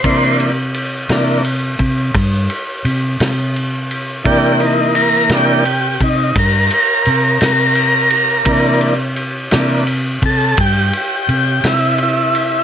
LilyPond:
<<
  \new Staff \with { instrumentName = "Tonewheel organ" } { \time 12/8 \key c \mixolydian \tempo 4. = 57 c''8 r1 r4. | g'8 <d' ees'>8 bes'8 g'4 ees'8 bes'8 bes'2~ bes'8~ | bes'8 r2 a'8 g'8 g'4 e'8 e'4 | }
  \new Staff \with { instrumentName = "Tonewheel organ" } { \time 12/8 \key c \mixolydian <e bes d'>8 r4 <e bes d'>8 r1 | <e bes d'>4. <e bes d'>8 r1 | <e bes d'>8 r4 <e bes d'>8 r1 | }
  \new Staff \with { instrumentName = "Fingered electric bass" } { \clef bass \time 12/8 \key c \mixolydian c4. c4 c8 g,8 r8 c8 c4. | c4. c4 c8 g,8 r8 c8 c4. | c4. c4 c8 g,8 r8 c8 c4. | }
  \new DrumStaff \with { instrumentName = "Drums" } \drummode { \time 12/8 <bd cymr>8 cymr8 cymr8 <cymr sn>8 cymr8 <bd cymr>8 <bd cymr>8 cymr8 cymr8 <cymr sn>8 cymr8 cymr8 | <bd cymr>8 cymr8 cymr8 <cymr sn>8 cymr8 <bd cymr>8 <bd cymr sn>8 cymr8 cymr8 <cymr sn>8 cymr8 cymr8 | <bd cymr>8 cymr8 cymr8 <cymr sn>8 cymr8 <bd cymr>8 <bd cymr>8 cymr8 cymr8 <cymr sn>8 cymr8 cymr8 | }
>>